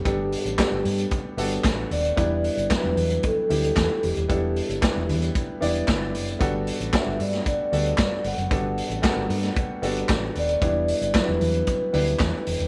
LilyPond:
<<
  \new Staff \with { instrumentName = "Vibraphone" } { \time 4/4 \key g \major \tempo 4 = 114 g'2 r4. d''8~ | d''4 b'4 a'4. g'8 | g'2 r2 | r4 e''8 d''8 d''4. fis''8~ |
fis''2~ fis''8 r4 d''8~ | d''4 b'8 b'2~ b'8 | }
  \new Staff \with { instrumentName = "Grand piano" } { \time 4/4 \key g \major <g b d' g' a'>8 r8 <g b d' g' a'>4 r8 <g b d' fis' a'>4 r8 | <g b d' e' b'>8 r8 <fis g b d' e' b'>4 r8 <g b d' e' g'>4 r8 | <g b d' e' a'>8 r8 <g b d' e' b'>4 r8 <g b d' e' d''>4 r8 | <g b d' fis' a'>8 r8 <g b d' fis' a'>4 r8 <g b d' fis' a'>4 r8 |
<g b d' fis' a'>8 r8 <g bes b d' fis' a'>4 r8 <g b d' fis' a'>4 r8 | <g b d' e' b'>8 r8 <fis g b d' e' b'>4 r8 <g b d' e' b'>4 r8 | }
  \new Staff \with { instrumentName = "Fingered electric bass" } { \clef bass \time 4/4 \key g \major g,,8. a,,16 r16 g,,16 g,8 r8 g,,8 a,,8 ees,,8 | e,,8. g,,16 r16 e,,16 e,8 r8 d,8 e,16 r16 e,,16 ees,,16 | e,,8. g,,16 r16 e,,16 e,8 r8 e,,8 g,,8 fis,,8 | g,,8. a,,16 r16 g,,16 g,8 r8 d,8 g,16 r16 g,,16 fis,,16 |
g,,8. a,,16 r16 g,,16 g,8 r8 g,,8 a,,8 ees,,8 | e,,8. g,,16 r16 e,,16 e,8 r8 d,8 e,16 r16 e,,16 ees,,16 | }
  \new DrumStaff \with { instrumentName = "Drums" } \drummode { \time 4/4 <hh bd>8 hho16 hh16 <hc hh bd sn>8 hho16 hh16 <hh bd>8 hho16 hh16 <hc hh bd sn>8 hho16 hh16 | <hh bd>8 hho16 hh16 <hc hh bd sn>8 hho16 hh16 <hh bd>8 hho16 hh16 <hc hh bd sn>8 hho16 hh16 | <hh bd>8 hho16 hh16 <hc hh bd sn>8 hho16 hh16 <hh bd>8 hho16 hh16 <hc hh bd sn>8 hho16 hh16 | <hh bd>8 hho16 hh16 <hc hh bd sn>8 hho16 <hh sn>16 <hh bd>8 hho16 hh16 <hc hh bd sn>8 hho16 hh16 |
<hh bd>8 hho16 hh16 <hc hh bd sn>8 hho16 <hh sn>16 <hh bd>8 hho16 hh16 <hc hh bd sn>8 hho16 hh16 | <hh bd>8 hho16 hh16 <hc hh bd sn>8 hho16 hh16 <hh bd>8 hho16 hh16 <hc hh bd sn>8 hho16 hh16 | }
>>